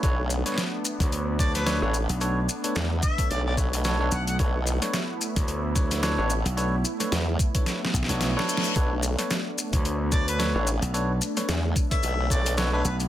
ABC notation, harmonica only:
X:1
M:4/4
L:1/16
Q:"Swing 16ths" 1/4=110
K:Bm
V:1 name="Harmonica"
z8 z2 d B2 z3 | z6 e2 d d z4 f f | z16 | z16 |
z8 z2 d B2 z3 | z6 z e3 d2 z B B z |]